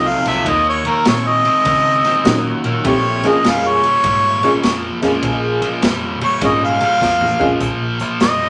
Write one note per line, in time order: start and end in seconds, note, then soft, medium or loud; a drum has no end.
0.00 0.14 C2 medium
0.00 0.22 F2 medium
0.00 0.22 C3 medium
0.00 0.46 F#3 medium
0.00 0.46 A3 medium
0.00 0.47 C4 medium
0.00 0.47 D#4 medium
0.00 0.47 F4 medium
0.08 0.27 F5 medium
0.25 0.40 C2 medium
0.25 0.45 F2 medium
0.25 0.45 C3 medium
0.25 0.50 E5 medium
0.25 snare soft
0.25 ride medium
0.46 0.86 D#2 loud
0.46 0.82 D#3 medium
0.46 0.82 A#3 medium
0.46 0.67 D#5 medium
0.46 kick loud
0.46 ride medium
0.69 0.90 C#5 medium
0.85 1.05 D#3 medium
0.85 1.05 A#3 medium
0.85 1.07 A#4 medium
0.85 ride medium
1.05 1.47 A#2 medium
1.05 1.42 D#3 medium
1.05 1.42 C4 medium
1.05 1.29 C#5 loud
1.05 snare loud
1.05 ride medium
1.27 2.42 D#5 loud
1.45 1.64 D#3 medium
1.45 1.64 C4 medium
1.45 ride medium
1.65 2.05 C#3 medium
1.65 2.01 D#3 medium
1.65 2.02 C4 loud
1.65 kick loud
1.65 snare soft
1.65 ride medium
2.04 2.24 D#3 medium
2.04 2.24 C4 medium
2.04 snare soft
2.04 ride medium
2.25 2.52 A#2 loud
2.25 2.61 D#3 medium
2.25 2.85 F#3 medium
2.25 2.85 A#3 medium
2.25 2.61 A#3 medium
2.25 2.85 C#4 medium
2.25 2.85 D#4 medium
2.25 2.85 F#4 medium
2.25 snare loud
2.25 ride medium
2.64 2.78 A#2 medium
2.64 2.83 D#3 medium
2.64 2.83 A#3 loud
2.64 ride medium
2.84 3.25 A#1 medium
2.84 3.20 A#2 medium
2.84 3.20 F3 loud
2.84 3.20 G3 medium
2.84 3.20 A3 medium
2.84 3.20 C4 medium
2.84 3.21 E4 medium
2.84 3.21 G4 medium
2.84 3.30 C#5 medium
2.84 kick loud
2.84 ride medium
3.23 3.43 A#2 medium
3.23 3.43 F3 medium
3.23 3.76 G#3 medium
3.23 3.76 A#3 medium
3.23 3.76 C#4 medium
3.23 3.76 F4 medium
3.23 3.76 G#4 medium
3.23 snare soft
3.23 ride medium
3.28 3.50 D#5 medium
3.44 3.85 F2 medium
3.44 3.80 A#2 medium
3.44 3.81 G3 loud
3.44 snare loud
3.44 ride medium
3.49 3.70 F5 loud
3.69 4.82 C#5 loud
3.83 4.03 A#2 medium
3.83 4.03 G3 medium
3.83 ride medium
4.04 4.44 G#2 loud
4.04 4.40 A#2 medium
4.04 4.40 G3 loud
4.04 kick loud
4.04 ride loud
4.43 4.62 A#2 medium
4.43 4.62 G3 medium
4.43 4.62 G#3 medium
4.43 4.62 A#3 medium
4.43 4.62 C#4 medium
4.43 4.62 F4 medium
4.43 4.62 G#4 medium
4.43 snare soft
4.43 ride medium
4.63 4.90 F2 loud
4.63 4.99 A#2 medium
4.63 4.99 F3 loud
4.63 snare loud
4.63 ride medium
5.02 5.17 F2 medium
5.02 5.21 A#2 medium
5.02 5.22 F3 medium
5.02 5.78 G#3 medium
5.02 5.79 A#3 medium
5.02 5.79 C#4 medium
5.02 5.79 F4 medium
5.02 5.79 G#4 medium
5.02 snare soft
5.02 ride medium
5.22 5.63 A#1 loud
5.22 5.59 A#2 medium
5.22 5.59 F3 loud
5.22 kick loud
5.22 ride medium
5.62 5.81 A#2 medium
5.62 5.81 F3 medium
5.62 ride medium
5.82 6.23 F2 medium
5.82 6.18 A#2 medium
5.82 6.18 G3 loud
5.82 snare loud
5.82 ride medium
6.21 6.40 A#2 medium
6.21 6.40 G3 medium
6.21 6.43 C#5 loud
6.21 ride medium
6.41 6.82 G#2 loud
6.41 6.77 A#2 medium
6.41 6.78 G3 loud
6.41 6.77 G#3 medium
6.41 6.77 A#3 medium
6.41 6.77 C#4 medium
6.41 6.78 F4 medium
6.41 6.78 G#4 medium
6.41 6.63 D#5 medium
6.41 kick loud
6.41 snare soft
6.41 ride medium
6.65 7.60 F5 loud
6.81 7.00 A#2 medium
6.81 7.00 G3 medium
6.81 ride medium
7.01 7.28 F2 loud
7.01 7.37 A#2 medium
7.01 7.38 F3 medium
7.01 kick medium
7.01 snare medium
7.21 mid tom medium
7.40 7.54 F2 medium
7.40 7.59 A#2 medium
7.40 7.60 F3 loud
7.40 7.59 G#3 medium
7.40 7.59 A#3 medium
7.40 7.59 C#4 medium
7.40 7.59 F4 medium
7.40 7.60 G#4 medium
7.40 kick loud
7.60 8.01 A#1 medium
7.60 7.97 A#2 medium
7.60 7.97 F3 medium
7.60 kick loud
7.60 closed hi-hat medium
7.99 8.19 A#2 medium
7.99 8.19 F3 medium
7.99 closed hi-hat medium
8.20 8.49 F2 medium
8.20 8.49 A#2 medium
8.20 8.49 G3 loud
8.20 8.49 D#5 loud
8.20 snare loud
8.20 closed hi-hat medium